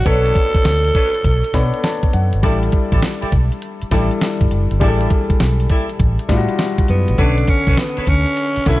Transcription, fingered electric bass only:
0.06 0.31 B1 loud
0.55 muted fingered electric bass stroke soft
0.65 0.90 D2 medium
1.25 1.41 B1 medium
1.54 1.71 B2 loud
2.14 2.30 F#2 medium
2.34 2.42 G1 medium
2.44 2.68 A1 loud
2.92 3.01 A1 loud
3.23 muted fingered electric bass stroke soft
3.33 3.49 B1 medium
3.83 muted fingered electric bass stroke soft
3.92 4.08 A1 loud
4.41 4.50 G1 medium
4.52 4.68 F#1 medium
4.72 4.80 G1 medium
4.81 5.06 A1 medium
5.30 muted fingered electric bass stroke soft
5.41 5.66 B1 medium
6.00 6.16 A1 medium
6.29 6.46 A2 medium
6.90 7.06 F#2 medium
7.09 7.17 A1 medium
7.19 7.44 B1 loud
7.67 7.76 B1 medium
7.98 muted fingered electric bass stroke soft
8.07 8.24 D2 medium
8.57 muted fingered electric bass stroke soft
8.67 8.80 B1 medium

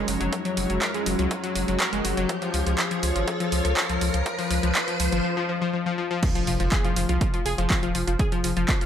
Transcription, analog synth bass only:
0.08 0.17 F#1 medium
0.21 0.29 F#1 medium
0.57 0.66 F#1 loud
0.70 0.78 F#1 medium
1.06 1.15 F#1 loud
1.19 1.27 C#2 medium
1.56 1.64 F#1 medium
1.68 1.77 F#1 medium
1.93 2.01 F#1 medium
2.05 2.14 F#1 medium
2.17 2.26 F#1 medium
2.54 2.63 C#2 medium
2.66 2.75 C#2 medium
3.03 3.12 C#2 loud
3.16 3.24 G#1 medium
3.52 3.61 C#2 medium
3.65 3.73 C#2 medium
3.89 3.98 C#2 medium
4.01 4.10 C#2 medium
4.14 4.22 C#2 medium
4.51 4.59 C#2 medium
4.63 4.72 C#2 medium
5.00 5.09 C#2 loud
5.12 5.21 G#1 medium
6.47 6.56 F1 medium
6.60 6.68 F1 medium
6.96 7.05 F1 loud
7.09 7.18 C2 medium
7.46 7.55 F1 medium
7.58 7.67 F1 medium
7.83 7.91 D#1 medium
7.95 8.04 F1 loud
8.07 8.16 F1 medium
8.44 8.53 F1 medium
8.57 8.65 F1 medium

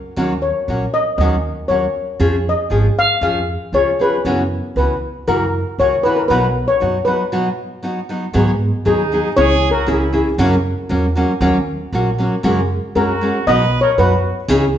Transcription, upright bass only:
0.17 0.50 D#2 medium
0.68 0.85 A#1 medium
1.18 1.51 D#2 loud
1.69 1.86 D#2 medium
2.20 2.53 F2 medium
2.70 2.87 G#1 medium
3.21 3.55 F2 medium
3.72 3.90 C#2 medium
4.25 4.59 F#2 medium
4.76 4.93 C#2 medium
5.28 5.61 F#2 medium
5.78 5.96 C#2 medium
6.30 6.63 B1 medium
6.82 6.99 F#2 medium
8.35 8.68 G#2 medium
8.86 9.19 D#2 medium
9.38 9.70 C#2 loud
9.88 10.21 C#2 loud
10.38 10.71 F#2 loud
10.90 11.23 E2 medium
11.41 11.74 D#2 loud
11.92 12.26 A#1 medium
12.44 12.77 F#2 medium
12.95 13.29 F#2 medium
13.47 13.80 B1 loud
13.98 14.31 F#2 medium
14.48 14.78 C#2 loud

